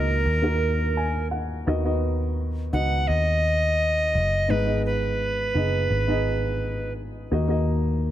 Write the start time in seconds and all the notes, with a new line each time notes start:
Already playing: C#2 D#3 A#3 D#4 F#4 A#4 D#5
0.26 D#2
0.42 A#3 D#4 F#4 A#4
0.97 G#5
1.31 F#5
1.66 D#2 D#3 B3 D#4 F#4 D#5
1.84 B3 D#4 F#4 D#5
2.73 C#2 B3 D#4 F#4 D#5 F#5
3.08 D#2 D#5
4.15 F#1
4.48 G#1 G#2 B3 D#4 G#4 B4 D#5
4.65 B3 D#4 G#4 D#5
4.86 B4
5.54 F#1 B3 D#4 G#4 D#5
5.90 G#1
6.07 B3 D#4 G#4 D#5
7.31 D#2 D#3 A#3 D#4 F#4 D#5
7.48 A#3 D#4 F#4 D#5